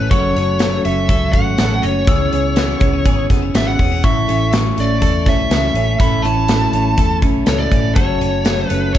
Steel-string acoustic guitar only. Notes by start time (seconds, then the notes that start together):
Already playing: A3 C#4 E4 A4
0.11 F#2 C#3 F#3 A3 C#4 A4
0.35 F#3 A3 C#4 A4
0.59 F#2 C#3 F#3 A3 C#4 A4
0.84 F#3 A3 C#4 A4
1.09 F#3 A3 C#4 A4
1.34 F#3 A3 C#4 A4
1.58 F#2 C#3 F#3 A3 C#4 A4
1.82 F#3 A3 C#4 A4
2.07 C#3 E3 B3 C#4 G#4
2.32 B3 C#4 G#4
2.56 C#3 E3 B3 C#4 G#4
2.80 B3 C#4 G#4
3.04 E3 B3 C#4 G#4
3.30 B3 C#4 G#4
3.54 C#3 E3 B3 C#4 G#4
3.79 B3 C#4 G#4
4.03 A2 E3 A3 C#4 E4 A4
4.28 A3 C#4 E4 A4
4.52 A2 E3 A3 C#4 E4 A4
4.76 A3 C#4 E4 A4
5.01 A3 C#4 E4 A4
5.26 A3 C#4 E4 A4
5.51 A2 E3 A3 C#4 E4 A4
5.75 A3 C#4 E4 A4
6.00 A2 E3 A3 C#4 E4 A4
6.24 A3 C#4 E4 A4
6.48 A2 E3 A3 C#4 E4 A4
6.73 A3 C#4 E4 A4
6.98 A3 C#4 E4 A4
7.22 A3 C#4 E4 A4
7.46 A2 E3 A3 C#4 E4 A4
7.70 A3 C#4 E4 A4
7.95 F#2 C#3 F#3 A3 C#4 A4
8.19 F#3 A3 C#4 A4
8.44 F#2 C#3 F#3 A3 C#4 A4
8.69 F#3 A3 C#4 A4
8.94 F#3 A3